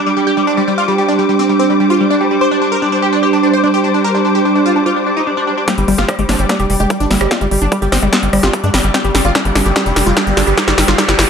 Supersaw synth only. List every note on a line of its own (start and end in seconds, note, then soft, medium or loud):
0.06 0.11 G3 medium
0.17 0.21 G3 medium
0.27 0.31 G4 medium
0.37 0.41 G3 medium
0.47 0.52 D4 medium
0.57 0.62 G3 medium
0.68 0.72 G3 medium
0.78 0.82 F4 loud
0.88 0.92 G3 medium
0.98 1.03 G3 medium
1.08 1.13 D4 medium
1.19 1.23 G3 medium
1.29 1.33 G3 medium
1.39 1.43 C4 medium
1.49 1.54 G3 medium
1.59 1.64 C4 loud
1.70 1.74 G3 medium
1.80 1.84 G3 medium
1.90 1.94 F4 medium
2.00 2.05 G3 medium
2.11 2.15 D4 medium
2.21 2.25 G3 medium
2.31 2.35 G3 medium
2.41 2.45 C5 loud
2.51 2.56 D4 medium
2.62 2.66 D4 medium
2.72 2.76 A#4 medium
2.82 2.86 D4 medium
2.92 2.96 D4 medium
3.02 3.07 G4 medium
3.13 3.17 D4 medium
3.23 3.27 G4 loud
3.33 3.37 D4 medium
3.43 3.48 D4 medium
3.53 3.58 C5 medium
3.64 3.68 D4 medium
3.74 3.78 G4 medium
3.84 3.88 D4 medium
3.94 3.99 D4 medium
4.04 4.09 A#4 loud
4.15 4.19 D4 medium
4.25 4.29 D4 medium
4.35 4.39 G4 medium
4.45 4.50 D4 medium
4.55 4.60 D4 medium
4.66 4.70 F4 medium
4.76 4.80 D4 medium
4.86 4.90 F4 loud
4.96 5.01 D4 medium
5.07 5.11 D4 medium
5.17 5.21 D#4 medium
5.27 5.31 D4 medium
5.37 5.41 D4 medium
5.47 5.52 D4 medium
5.58 5.62 D4 medium
5.68 5.72 G4 loud
5.78 5.82 G3 medium
5.88 5.92 G3 medium
5.98 6.03 F4 medium
6.09 6.13 G3 medium
6.19 6.23 G3 medium
6.29 6.33 D4 medium
6.39 6.43 G3 medium
6.49 6.54 D4 loud
6.60 6.64 G3 medium
6.70 6.74 G3 medium
6.80 6.84 G4 medium
6.90 6.94 G3 medium
7.00 7.05 D4 medium
7.11 7.15 G3 medium
7.21 7.25 G3 medium
7.31 7.35 F4 loud
7.41 7.45 G3 medium
7.51 7.56 G3 medium
7.62 7.66 D4 medium
7.72 7.76 G3 medium
7.82 7.86 G3 medium
7.92 7.96 C4 medium
8.02 8.07 G3 medium
8.13 8.17 C4 loud
8.23 8.27 G3 medium
8.33 8.37 G3 medium
8.43 8.47 F4 medium
8.53 8.58 G3 medium
8.64 8.68 D4 medium
8.74 8.78 G3 medium
8.84 8.88 G3 medium
8.94 8.99 G4 medium
9.04 9.09 G3 medium
9.15 9.19 G3 medium
9.25 9.29 F4 medium
9.35 9.39 G3 medium
9.45 9.50 G3 medium
9.55 9.60 D4 medium
9.66 9.70 G3 medium
9.76 9.80 G4 loud
9.86 9.90 G3 medium
9.96 10.01 G3 medium
10.06 10.11 F4 medium
10.17 10.21 G3 medium
10.27 10.31 G3 medium
10.37 10.41 D4 medium
10.47 10.52 G3 medium
10.57 10.62 G4 medium
10.68 10.72 G3 medium
10.78 10.82 G3 medium
10.88 10.92 F4 medium
10.98 11.03 G4 loud
11.09 11.13 G3 medium
11.19 11.23 G3 medium